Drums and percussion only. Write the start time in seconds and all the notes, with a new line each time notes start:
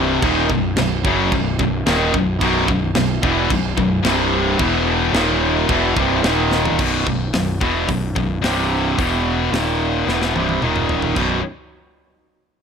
0.22 kick, china
0.50 kick
0.77 snare, china
1.05 kick
1.32 kick, china
1.59 kick
1.87 snare, china
2.14 kick
2.41 kick, china
2.68 kick
2.95 snare, china
3.23 kick
3.50 kick, china
3.78 kick
4.05 snare, china
4.59 kick, china
5.14 snare, china
5.69 kick, china
5.97 kick
6.24 snare, china
6.51 snare
6.65 floor tom
6.79 kick, crash
7.07 kick
7.34 snare, open hi-hat
7.61 kick
7.89 kick, open hi-hat
8.16 kick
8.44 snare, open hi-hat
8.99 kick, open hi-hat
9.54 snare, open hi-hat
10.09 snare
10.22 snare
10.36 high tom
10.49 high tom
10.62 mid tom
10.76 mid tom
10.89 floor tom
11.02 floor tom
11.16 kick, crash